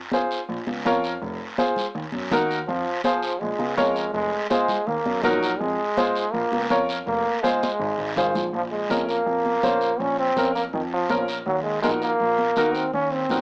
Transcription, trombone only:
2.67 F3
3.04 F3
3.40 G#3
3.77 G#3
4.13 G#3
4.50 G#3
4.87 A#3
5.24 F#3
5.59 G#3
6.32 A#3
7.07 A#3
7.43 G#3
8.17 D#3
8.34 F3
8.55 F3
8.71 G#3
9.08 A#3
10.00 C#4
10.19 C4
10.55 A#3
10.73 D#3
10.93 F3
11.46 F#3
11.63 G#3
11.82 G#3
12.01 A#3
12.74 C4
12.94 C#4
13.13 C4

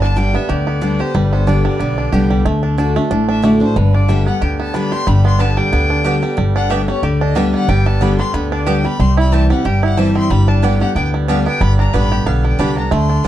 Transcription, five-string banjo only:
Already playing: D3 D4
0.02 D4
0.17 G3
0.35 B3
0.49 G4
0.67 B3
0.82 D4
1.00 G4
1.15 G3
1.33 B3
1.47 D4
1.65 G3
1.80 B3
1.98 D4
2.12 G4
2.30 G3
2.45 A3
2.63 D4
2.78 D4
2.96 A3
3.11 D4
3.29 D4
3.44 A3
3.61 D4
3.76 D3
3.94 D4
4.09 G3
4.26 B3
4.41 G4
4.60 B3
4.74 D4
4.92 G4
5.07 G3
5.25 B3
5.39 D4
5.57 G3
5.73 B3
5.90 D4
6.05 G4
6.23 G3
6.38 G3
6.56 D4
6.71 G4
6.88 G3
7.03 G4
7.21 D4
7.36 G3
7.54 B3
7.69 G3
7.86 B3
8.01 D4
8.20 G3
8.34 B3
8.52 D4
8.67 G4
8.85 G3
9.00 G3
9.17 E4
9.32 G4
9.50 G3
9.65 G4
9.83 E4
9.97 G3
10.16 C4
10.31 G3
10.48 D4
10.63 B3
10.81 G4
10.96 B3
11.14 G3
11.28 D4
11.46 B3
11.61 G3
11.79 D4
11.94 B3
12.12 G4
12.26 B3
12.45 G3
12.59 D4
12.77 B3
12.91 A3
13.09 D4

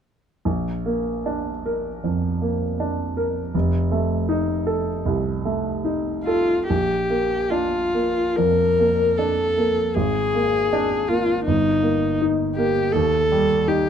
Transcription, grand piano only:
0.45 A#1
0.86 A#3
1.26 D4
1.66 A#4
2.04 F2
2.42 A#3
2.80 D4
3.17 A#4
3.54 F1
3.92 A3
4.29 D#4
4.67 A4
5.06 C2
5.45 A3
5.85 D#4
6.27 A4
6.70 A#1
7.10 A#3
7.51 D4
7.94 A#3
8.38 F2
8.80 A#3
9.19 D4
9.58 A#3
9.96 G#1
10.35 A#3
10.73 D4
11.10 A#3
11.47 G1
11.83 A#3
12.21 D#4
12.58 A#3
12.94 D#2
13.32 G3
13.68 D#4

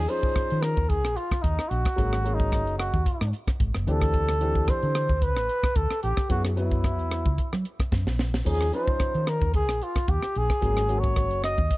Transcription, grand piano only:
0.08 F3 C#4 D#4 G#4
1.96 F#3 A#3 C#4 G#4
2.24 F#3 A#3 C#4 G#4
3.87 E3 C4 D4 G4
4.41 E3 C4 D4 G4
6.29 F#3 B3 E4 G#4
6.56 F#3 B3 E4 B4
8.45 F3 C#4 D#4 G#4
8.72 F3 C#4 D#4 F4
10.61 F#3 A#3 C#4 G#4
10.88 F#3 A#3 C#4 F#4

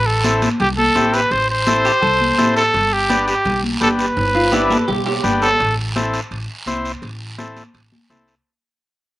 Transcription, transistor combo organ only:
0.24 C4 E4 A4
0.96 C4 E4 G4
1.67 C4 E4 A4
2.38 C4 E4 A4
3.09 B3 D4 G4
3.81 B3 D4 G4
4.53 B3 D4 E4
5.23 B3 D4 G4
5.96 C4 E4 A4
6.67 C4 E4 C5
7.38 C4 E4 A4
8.10 C4 E4 A4

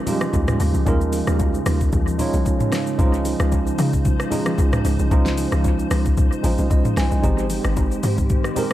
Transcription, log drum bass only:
0.34 D#2
0.60 D#2
0.75 C#2
0.87 D#2
1.28 D#2
1.66 D#2
1.93 D#2
2.34 C2
2.99 C#2
3.40 C#2
3.79 C#3
4.58 C#2
4.85 C#2
4.99 C2
5.11 C#2
5.52 C#2
5.91 C#2
6.18 C#2
6.44 A#1
6.59 C2
6.71 C#2
6.97 C2
7.12 C2
7.24 G#1
7.65 G#1
8.03 G#2

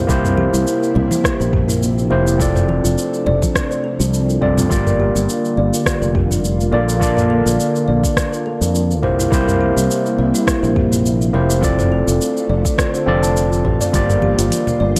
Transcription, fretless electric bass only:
0.09 C2
0.53 C2
0.95 C2
1.40 A#1
2.11 F1
2.85 F1
3.27 F1
4.00 C2
4.42 C2
4.71 G1
5.15 G1
5.57 G1
6.02 F1
6.73 A#1
7.46 A#1
7.88 A#1
8.61 F2
9.03 C2
9.32 C2
9.76 C2
10.18 C2
10.63 A#1
11.34 F1
12.07 F1
12.49 F1
13.07 F1
13.65 A1
13.94 G1
14.38 G1
14.80 G1

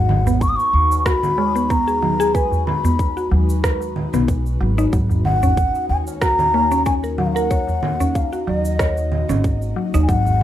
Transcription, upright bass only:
Already playing: G#1
0.73 D#2
3.31 D#2
4.14 B1
4.60 G#1
4.93 G#1
5.89 D#2
8.47 D#2
9.29 G#1
9.94 D#2
10.09 G#1

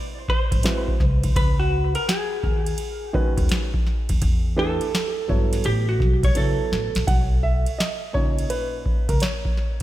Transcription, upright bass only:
0.52 G#1
1.00 C2
1.36 C#2
2.44 D#2
3.38 D#2
4.10 D#2
4.22 E2
5.30 G2
5.65 A1
6.00 B1
6.36 C#2
6.72 A1
6.96 A#1
7.08 B1
8.15 C#2
9.09 C#2

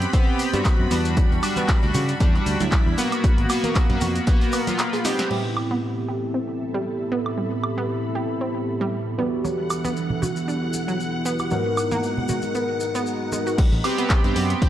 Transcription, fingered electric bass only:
0.54 G2
0.79 F#2
0.91 E2
1.31 E2
1.83 D2
1.94 C#3
2.20 E2
2.46 D2
2.60 D2
2.86 E2
3.38 G#1
3.90 F#2
4.01 F2
13.73 A1
14.24 G2
14.36 F#2
14.62 A1

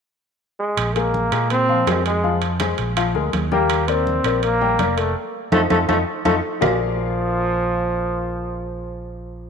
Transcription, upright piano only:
0.96 G#3 G#4 A#4
1.32 G#3 G#4 A#4
1.69 F3 F4 F5
1.87 G#3 G#4 A#4
2.24 F3 F4 F5
2.60 G#3 G#4 C5
2.97 F3 F4 F5
3.15 G#3 G#4 A#4
3.52 G3 G4 G5
3.88 A#3 A#4 D5
4.25 A#3 A#4 D5
4.61 G3 G4 G5
4.79 A#3 A#4 D5
5.52 D#4 F4 A4
5.70 D#4 F4 A4
5.88 D#4 F4 A4
6.25 D#4 F4 A4
6.61 A#3 F4 G#4 A#4 D5 F5

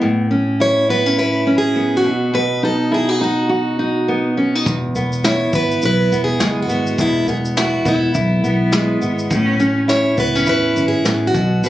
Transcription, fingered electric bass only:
4.66 E1
4.95 E1
5.53 G#1
5.83 B1
6.12 E1
6.41 F#1
6.70 G#1
6.98 E1
7.27 E1
7.86 E1
8.15 B1
8.44 B1
9.02 G#1
9.31 A1
9.60 A1
10.18 C#2
10.48 E2
10.77 G#1
11.06 A1
11.35 B1
11.64 B1

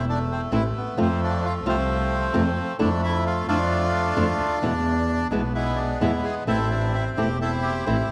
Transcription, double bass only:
Already playing: E1
0.52 A1
0.97 F2
1.65 C2
2.34 F2
2.79 F2
3.48 F2
4.16 F2
4.40 D2
4.63 E2
5.31 B1
6.01 E2
6.46 A1
7.17 E1
7.87 A1

